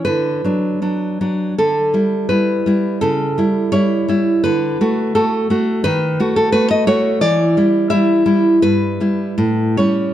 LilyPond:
\new Staff \with { instrumentName = "Nylon-string guitar" } { \time 2/4 \key d \major \tempo 4 = 83 << { b'2 | a'4 b'4 | a'4 cis''4 | b'4 a'8 r8 |
b'8. a'16 b'16 dis''16 cis''8 | d''4 e''4 | b'4. cis''8 | } \\ { d8 <fis d'>8 <fis d'>8 <fis d'>8 | d8 <g e'>8 <g e'>8 <g e'>8 | cis8 <g e'>8 <g e'>8 <g e'>8 | d8 <a fis'>8 <a fis'>8 <a fis'>8 |
dis8 <a fis'>8 <a fis'>8 <a fis'>8 | e8 <g e'>8 <g e'>8 <g e'>8 | g,8 <g e'>8 a,8 <g cis'>8 | } >> }